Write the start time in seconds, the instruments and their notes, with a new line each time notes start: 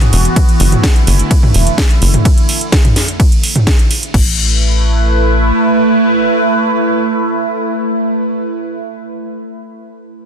Already playing: ambient pad E3 B3 F#4
0.01 closed hi-hat, mid tom
0.13 analog synth bass E1, open hi-hat
0.25 closed hi-hat
0.36 ambient pad D3 A3 E4, kick, closed hi-hat, ride
0.49 closed hi-hat
0.60 analog synth bass F#1, open hi-hat
0.72 closed hi-hat, mid tom
0.83 kick, snare, closed hi-hat, ride
0.96 closed hi-hat
1.07 analog synth bass F#1, open hi-hat
1.19 closed hi-hat
1.31 kick, closed hi-hat, ride
1.43 mid tom
1.54 analog synth bass E1, open hi-hat
1.67 closed hi-hat
1.78 kick, snare, closed hi-hat, ride
1.90 closed hi-hat
2.02 analog synth bass F#1, open hi-hat
2.14 closed hi-hat, mid tom
2.25 kick, closed hi-hat, ride
2.38 closed hi-hat
2.49 open hi-hat
2.61 closed hi-hat
2.72 kick, snare, closed hi-hat, ride
2.85 closed hi-hat, mid tom
2.96 snare, open hi-hat
3.08 closed hi-hat
3.20 kick, closed hi-hat, ride
3.32 closed hi-hat
3.43 open hi-hat
3.56 closed hi-hat, mid tom
3.67 kick, snare, closed hi-hat, ride
3.79 closed hi-hat
3.91 open hi-hat
4.03 closed hi-hat
4.14 analog synth bass A1, ambient pad A3 E4 B4, kick, crash